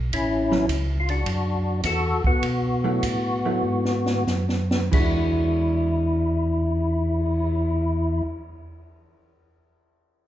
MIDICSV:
0, 0, Header, 1, 6, 480
1, 0, Start_track
1, 0, Tempo, 569260
1, 111, Time_signature, 4, 2, 24, 8
1, 1552, Tempo, 599401
1, 2992, Tempo, 640342
1, 3952, Tempo, 661521
1, 7837, End_track
2, 0, Start_track
2, 0, Title_t, "Tonewheel organ"
2, 0, Program_c, 0, 16
2, 112, Note_on_c, 0, 64, 99
2, 118, Note_on_c, 0, 61, 76
2, 554, Note_off_c, 0, 64, 0
2, 557, Note_off_c, 0, 61, 0
2, 842, Note_on_c, 0, 65, 66
2, 921, Note_off_c, 0, 65, 0
2, 927, Note_on_c, 0, 62, 64
2, 938, Note_on_c, 0, 66, 80
2, 1524, Note_off_c, 0, 62, 0
2, 1529, Note_off_c, 0, 66, 0
2, 1563, Note_on_c, 0, 66, 76
2, 1573, Note_on_c, 0, 69, 93
2, 1859, Note_off_c, 0, 66, 0
2, 1864, Note_off_c, 0, 69, 0
2, 1894, Note_on_c, 0, 59, 62
2, 1894, Note_on_c, 0, 66, 96
2, 3444, Note_off_c, 0, 59, 0
2, 3444, Note_off_c, 0, 66, 0
2, 3966, Note_on_c, 0, 64, 75
2, 6355, Note_off_c, 0, 64, 0
2, 7837, End_track
3, 0, Start_track
3, 0, Title_t, "Hollow-body jazz guitar"
3, 0, Program_c, 1, 26
3, 436, Note_on_c, 1, 54, 63
3, 442, Note_on_c, 1, 61, 67
3, 450, Note_on_c, 1, 64, 76
3, 571, Note_off_c, 1, 54, 0
3, 573, Note_off_c, 1, 61, 0
3, 578, Note_off_c, 1, 64, 0
3, 2354, Note_on_c, 1, 54, 60
3, 2358, Note_on_c, 1, 57, 62
3, 2364, Note_on_c, 1, 64, 73
3, 2488, Note_off_c, 1, 54, 0
3, 2490, Note_off_c, 1, 57, 0
3, 2493, Note_off_c, 1, 64, 0
3, 2844, Note_on_c, 1, 54, 56
3, 2847, Note_on_c, 1, 57, 61
3, 2853, Note_on_c, 1, 64, 71
3, 2980, Note_off_c, 1, 54, 0
3, 2981, Note_off_c, 1, 57, 0
3, 2984, Note_off_c, 1, 64, 0
3, 3950, Note_on_c, 1, 52, 57
3, 3960, Note_on_c, 1, 56, 57
3, 3966, Note_on_c, 1, 62, 61
3, 3972, Note_on_c, 1, 66, 67
3, 6368, Note_off_c, 1, 52, 0
3, 6378, Note_off_c, 1, 56, 0
3, 6384, Note_off_c, 1, 62, 0
3, 6390, Note_off_c, 1, 66, 0
3, 7837, End_track
4, 0, Start_track
4, 0, Title_t, "Tonewheel organ"
4, 0, Program_c, 2, 16
4, 0, Note_on_c, 2, 35, 81
4, 92, Note_off_c, 2, 35, 0
4, 104, Note_on_c, 2, 33, 81
4, 569, Note_off_c, 2, 33, 0
4, 579, Note_on_c, 2, 37, 83
4, 1048, Note_off_c, 2, 37, 0
4, 1063, Note_on_c, 2, 42, 79
4, 1536, Note_off_c, 2, 42, 0
4, 1548, Note_on_c, 2, 40, 84
4, 1851, Note_off_c, 2, 40, 0
4, 1873, Note_on_c, 2, 40, 36
4, 1947, Note_off_c, 2, 40, 0
4, 2018, Note_on_c, 2, 47, 79
4, 2485, Note_off_c, 2, 47, 0
4, 2502, Note_on_c, 2, 45, 85
4, 2978, Note_off_c, 2, 45, 0
4, 2994, Note_on_c, 2, 44, 76
4, 3452, Note_off_c, 2, 44, 0
4, 3467, Note_on_c, 2, 42, 84
4, 3939, Note_off_c, 2, 42, 0
4, 3955, Note_on_c, 2, 40, 81
4, 6344, Note_off_c, 2, 40, 0
4, 7837, End_track
5, 0, Start_track
5, 0, Title_t, "Cymbal swell"
5, 4289, Note_on_c, 9, 59, 45
5, 5786, Note_off_c, 9, 59, 0
5, 7837, End_track
6, 0, Start_track
6, 0, Title_t, "Drums"
6, 108, Note_on_c, 9, 36, 26
6, 108, Note_on_c, 9, 51, 61
6, 192, Note_off_c, 9, 36, 0
6, 193, Note_off_c, 9, 51, 0
6, 433, Note_on_c, 9, 38, 61
6, 517, Note_off_c, 9, 38, 0
6, 583, Note_on_c, 9, 36, 23
6, 583, Note_on_c, 9, 44, 50
6, 583, Note_on_c, 9, 51, 60
6, 667, Note_off_c, 9, 36, 0
6, 667, Note_off_c, 9, 44, 0
6, 667, Note_off_c, 9, 51, 0
6, 915, Note_on_c, 9, 51, 41
6, 1000, Note_off_c, 9, 51, 0
6, 1063, Note_on_c, 9, 36, 23
6, 1064, Note_on_c, 9, 51, 58
6, 1148, Note_off_c, 9, 36, 0
6, 1148, Note_off_c, 9, 51, 0
6, 1547, Note_on_c, 9, 38, 36
6, 1548, Note_on_c, 9, 44, 55
6, 1548, Note_on_c, 9, 51, 68
6, 1550, Note_on_c, 9, 36, 20
6, 1627, Note_off_c, 9, 38, 0
6, 1628, Note_off_c, 9, 44, 0
6, 1628, Note_off_c, 9, 51, 0
6, 1631, Note_off_c, 9, 36, 0
6, 1874, Note_on_c, 9, 36, 50
6, 1954, Note_off_c, 9, 36, 0
6, 2021, Note_on_c, 9, 51, 58
6, 2022, Note_on_c, 9, 36, 19
6, 2101, Note_off_c, 9, 51, 0
6, 2102, Note_off_c, 9, 36, 0
6, 2503, Note_on_c, 9, 36, 24
6, 2503, Note_on_c, 9, 44, 59
6, 2503, Note_on_c, 9, 51, 65
6, 2583, Note_off_c, 9, 36, 0
6, 2583, Note_off_c, 9, 44, 0
6, 2583, Note_off_c, 9, 51, 0
6, 3151, Note_on_c, 9, 38, 51
6, 3226, Note_off_c, 9, 38, 0
6, 3309, Note_on_c, 9, 38, 65
6, 3384, Note_off_c, 9, 38, 0
6, 3468, Note_on_c, 9, 38, 59
6, 3469, Note_on_c, 9, 44, 51
6, 3543, Note_off_c, 9, 38, 0
6, 3544, Note_off_c, 9, 44, 0
6, 3629, Note_on_c, 9, 38, 59
6, 3704, Note_off_c, 9, 38, 0
6, 3794, Note_on_c, 9, 38, 80
6, 3869, Note_off_c, 9, 38, 0
6, 3957, Note_on_c, 9, 36, 54
6, 3958, Note_on_c, 9, 49, 59
6, 4029, Note_off_c, 9, 36, 0
6, 4030, Note_off_c, 9, 49, 0
6, 7837, End_track
0, 0, End_of_file